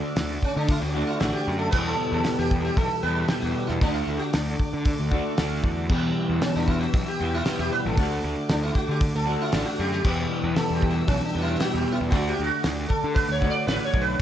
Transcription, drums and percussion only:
0.16 snare, open hi-hat
0.43 kick
0.68 kick, open hi-hat
1.20 snare, open hi-hat
1.72 kick, crash
2.24 snare, open hi-hat
2.51 kick
2.77 kick, open hi-hat
3.28 snare, open hi-hat
3.68 snare
3.81 kick, open hi-hat
4.33 snare, open hi-hat
4.60 kick
4.85 kick, open hi-hat
5.12 kick
5.38 snare, open hi-hat
5.64 kick
5.89 kick, crash
6.42 snare, open hi-hat
6.68 kick
6.94 kick, open hi-hat
7.45 snare, open hi-hat
7.97 kick, open hi-hat
8.49 snare, open hi-hat
8.75 kick
9.01 kick, open hi-hat
9.52 snare, open hi-hat
9.92 snare
10.04 kick, crash
10.56 snare, open hi-hat
10.82 kick
11.08 kick, open hi-hat
11.60 snare, open hi-hat
12.12 kick, open hi-hat
12.64 snare, open hi-hat
12.90 kick
13.16 kick, open hi-hat
13.42 kick
13.68 snare, open hi-hat
13.94 kick

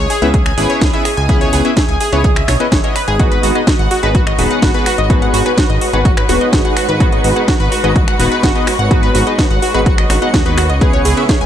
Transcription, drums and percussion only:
0.10 open hi-hat
0.22 closed hi-hat
0.34 kick, closed hi-hat
0.46 finger snap, closed hi-hat
0.58 open hi-hat
0.70 closed hi-hat
0.81 kick, snare, closed hi-hat
0.93 closed hi-hat
1.05 finger snap, open hi-hat
1.17 closed hi-hat
1.29 kick, closed hi-hat
1.41 closed hi-hat
1.53 open hi-hat
1.65 closed hi-hat
1.77 kick, snare, closed hi-hat
1.89 closed hi-hat
2.00 open hi-hat
2.12 closed hi-hat
2.24 kick, closed hi-hat
2.36 finger snap, closed hi-hat
2.48 finger snap, snare, open hi-hat
2.60 closed hi-hat
2.72 kick, snare, closed hi-hat
2.84 closed hi-hat
2.96 finger snap, open hi-hat
3.08 closed hi-hat
3.19 kick, closed hi-hat
3.32 closed hi-hat
3.43 open hi-hat
3.55 closed hi-hat
3.67 kick, snare, closed hi-hat
3.79 closed hi-hat
3.91 open hi-hat
4.03 closed hi-hat
4.15 kick, closed hi-hat
4.27 finger snap, closed hi-hat
4.39 open hi-hat
4.51 closed hi-hat
4.62 kick, snare, closed hi-hat
4.74 closed hi-hat
4.86 finger snap, open hi-hat
4.98 closed hi-hat
5.10 kick, closed hi-hat
5.22 closed hi-hat
5.34 open hi-hat
5.46 closed hi-hat
5.58 kick, snare, closed hi-hat
5.70 closed hi-hat
5.81 open hi-hat
5.93 closed hi-hat
6.05 kick, closed hi-hat
6.17 finger snap, closed hi-hat
6.29 snare, open hi-hat
6.41 closed hi-hat
6.53 kick, snare, closed hi-hat
6.65 closed hi-hat
6.77 finger snap, open hi-hat
6.89 closed hi-hat
7.00 kick, closed hi-hat
7.12 closed hi-hat
7.24 open hi-hat
7.36 closed hi-hat
7.48 kick, snare, closed hi-hat
7.60 closed hi-hat
7.72 open hi-hat
7.84 closed hi-hat
7.96 kick, closed hi-hat
8.08 finger snap, closed hi-hat
8.20 open hi-hat
8.32 closed hi-hat
8.43 kick, snare, closed hi-hat
8.55 closed hi-hat
8.67 finger snap, open hi-hat
8.79 closed hi-hat
8.91 kick, closed hi-hat
9.03 closed hi-hat
9.15 open hi-hat
9.27 closed hi-hat
9.38 kick, snare, closed hi-hat
9.51 closed hi-hat
9.62 open hi-hat
9.74 closed hi-hat
9.86 kick, closed hi-hat
9.98 finger snap, closed hi-hat
10.10 finger snap, snare, open hi-hat
10.22 closed hi-hat
10.34 kick, snare, closed hi-hat
10.46 closed hi-hat
10.58 finger snap, open hi-hat
10.70 closed hi-hat
10.81 kick, closed hi-hat
10.93 closed hi-hat
11.05 open hi-hat, ride
11.17 closed hi-hat
11.29 kick, snare, closed hi-hat
11.41 closed hi-hat

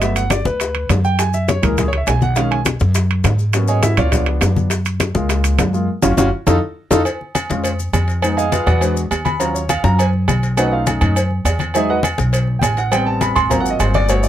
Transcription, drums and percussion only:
0.02 high bongo, high conga, high timbale, maracas
0.16 high conga, high timbale, maracas
0.30 high bongo, high conga, high timbale, low timbale, maracas
0.45 high conga, maracas
0.60 high bongo, high conga, high timbale, maracas
0.75 high conga, high timbale
0.89 high bongo, low bongo, high conga, high timbale, low timbale, maracas
1.04 high conga, maracas
1.19 high bongo, high conga, high timbale, maracas
1.33 high conga, maracas
1.48 high bongo, high conga, high timbale, low timbale, maracas
1.63 high bongo, high conga, low conga, high timbale, maracas
1.78 high bongo, high conga, low conga, high timbale, maracas
1.92 high bongo, high conga, high timbale
2.07 high bongo, low bongo, high conga, high timbale, low timbale, maracas
2.21 high bongo, high conga, maracas
2.36 high bongo, high conga, high timbale, maracas
2.52 high conga, high timbale
2.65 high bongo, high conga, high timbale, low timbale, maracas
2.80 high conga, maracas
2.95 high bongo, high conga, high timbale, maracas
3.11 high conga, high timbale
3.24 high bongo, low bongo, high conga, high timbale, low timbale, maracas
3.39 high conga, maracas
3.53 high bongo, high conga, high timbale, maracas
3.68 high conga, maracas
3.83 high bongo, high conga, high timbale, low timbale, maracas
3.97 high bongo, high conga, low conga, high timbale, maracas
4.12 high bongo, high conga, low conga, high timbale, maracas
4.26 high bongo, high conga, high timbale
4.41 high bongo, low bongo, high conga, high timbale, low timbale, maracas
4.55 high bongo, high conga, maracas
4.70 high bongo, high conga, high timbale, maracas
4.85 high conga, high timbale, maracas
5.00 high bongo, high conga, high timbale, low timbale, maracas
5.15 high conga, maracas
5.29 high bongo, high conga, high timbale, maracas
5.44 high conga, high timbale, maracas
5.58 high bongo, low bongo, high conga, high timbale, low timbale, maracas
5.73 high conga, maracas
6.02 high bongo, high conga, high timbale, maracas
6.17 high bongo, high conga, high timbale, maracas
6.47 high bongo, high conga, high timbale, maracas
6.91 high bongo, high conga, high timbale, maracas
7.05 cowbell, high conga, low agogo, maracas
7.21 high conga
7.35 cowbell, high conga, low timbale, low agogo, maracas
7.50 cowbell, high conga, maracas
7.64 cowbell, high conga, low agogo, maracas
7.79 high conga, maracas
7.93 cowbell, high conga, low timbale, low agogo, maracas
8.08 cowbell, high conga, maracas
8.22 cowbell, high conga, low agogo, maracas
8.37 high conga, maracas
8.52 cowbell, high conga, low timbale, low agogo, maracas
8.67 cowbell, high conga, low conga, low agogo, maracas
8.81 cowbell, high conga, low agogo, maracas
8.97 high conga, maracas
9.11 cowbell, high conga, low timbale, low agogo, maracas
9.25 cowbell, high conga, low agogo, maracas
9.40 cowbell, high conga, low agogo, maracas
9.55 high conga, maracas
9.69 cowbell, high conga, low timbale, low agogo, maracas
9.84 cowbell, high conga, maracas
9.99 cowbell, high conga, low agogo, maracas
10.13 high conga
10.28 cowbell, high conga, low timbale, low agogo, maracas
10.43 cowbell, high conga, maracas
10.57 cowbell, high conga, low agogo, maracas
10.72 high conga
10.87 cowbell, high conga, low timbale, low agogo, maracas
11.01 cowbell, high conga, low conga, low agogo, maracas
11.16 cowbell, high conga, low agogo, maracas
11.31 high conga
11.45 cowbell, high conga, low timbale, low agogo, maracas
11.59 cowbell, high conga, low agogo, maracas
11.74 cowbell, high conga, low agogo, maracas
11.89 high conga
12.03 cowbell, high conga, low timbale, low agogo, maracas
12.18 cowbell, high conga, maracas
12.32 cowbell, high conga, low agogo, maracas
12.47 high conga
12.62 cowbell, high conga, low timbale, low agogo, maracas
12.77 cowbell, high conga, maracas
12.91 cowbell, high conga, low agogo, maracas
13.07 high conga
13.21 cowbell, high conga, low timbale, low agogo, maracas
13.36 cowbell, high conga, low conga, low agogo, maracas
13.51 cowbell, high conga, low conga, low agogo, maracas
13.66 maracas
13.80 cowbell, high conga, low timbale, low agogo, maracas
13.94 cowbell, high conga, low agogo, maracas
14.09 cowbell, high conga, low agogo, maracas
14.23 high conga, maracas

